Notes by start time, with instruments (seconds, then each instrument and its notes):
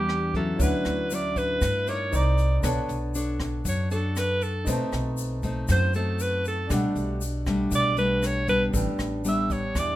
Already playing: upright bass E2, nylon-string guitar E3 G3 B3 D4, grand piano D4 B4 G5, alto saxophone G4
0.09 cross-stick, closed hi-hat
0.34 nylon-string guitar F#3 C#4 E4, alto saxophone A4, kick, closed hi-hat
0.57 upright bass D2, grand piano D4 E4 C#5, kick, closed hi-hat, shaker
0.61 nylon-string guitar D3, alto saxophone B4, grand piano F#5
0.85 upright bass D2, cross-stick, closed hi-hat, shaker
1.11 nylon-string guitar F#3 C#4 E4, alto saxophone D5, closed hi-hat, shaker
1.36 alto saxophone B4, kick, closed hi-hat, shaker
1.61 upright bass G2, nylon-string guitar A2, kick, cross-stick, closed hi-hat, shaker
1.87 nylon-string guitar D#4 A#4 D5, alto saxophone C#5, closed hi-hat, shaker
2.11 upright bass C2, grand piano D#4 C5 D5 A#5, closed hi-hat, shaker
2.16 alto saxophone D5
2.38 closed hi-hat, shaker
2.60 upright bass B1, nylon-string guitar B3 D4 A4 C#5, grand piano D4 B4, kick, cross-stick, closed hi-hat, shaker
2.65 grand piano C#5 A5
2.89 upright bass B1, closed hi-hat, shaker
3.14 nylon-string guitar D4 A4 C#5, closed hi-hat, shaker
3.40 kick, cross-stick, closed hi-hat, shaker
3.65 upright bass F#2, nylon-string guitar F#3, alto saxophone C#5, kick, closed hi-hat, shaker
3.91 nylon-string guitar D4 A4 C#5, alto saxophone A4, closed hi-hat, shaker
4.16 alto saxophone B4, cross-stick, closed hi-hat, shaker
4.41 alto saxophone A4, closed hi-hat, shaker
4.65 upright bass B1, nylon-string guitar B2 A3 C4 D#4, grand piano D#4 B4 C5, kick, closed hi-hat, shaker
4.71 grand piano A5
4.92 upright bass B1, cross-stick, closed hi-hat, shaker
5.17 closed hi-hat, shaker
5.43 nylon-string guitar A3 C4 D#4, kick, closed hi-hat, shaker
5.68 upright bass F#2, nylon-string guitar F#3, alto saxophone C5, kick, cross-stick, closed hi-hat, shaker
5.94 nylon-string guitar A3 C4 D#4, alto saxophone A4, closed hi-hat, shaker
6.19 alto saxophone B4, closed hi-hat, shaker
6.45 alto saxophone A4, closed hi-hat, shaker
6.67 upright bass B1, nylon-string guitar B2 G3, grand piano D4 G4 A4, kick, cross-stick, closed hi-hat, shaker
6.71 nylon-string guitar A3 D4, grand piano F#5
6.95 upright bass B1, closed hi-hat, shaker
7.21 closed hi-hat, shaker
7.46 nylon-string guitar G3 A3 D4, kick, cross-stick, closed hi-hat, shaker
7.71 upright bass B1, nylon-string guitar B2, kick, closed hi-hat, shaker
7.75 alto saxophone D5
7.97 nylon-string guitar G3 A3 D4, alto saxophone B4, closed hi-hat, shaker
8.23 alto saxophone C#5, cross-stick, closed hi-hat, shaker
8.48 nylon-string guitar G3 B3 D4, alto saxophone B4, kick, closed hi-hat, shaker
8.71 upright bass A1, nylon-string guitar A2, grand piano D4 A4, kick, closed hi-hat, shaker
8.75 grand piano B4 G5
8.98 upright bass A1, cross-stick, closed hi-hat, shaker
9.25 nylon-string guitar G3 B3 D4, alto saxophone E5, closed hi-hat, shaker
9.50 alto saxophone C#5, kick, closed hi-hat, shaker
9.75 upright bass E2, nylon-string guitar E3, alto saxophone D5, kick, cross-stick, closed hi-hat, shaker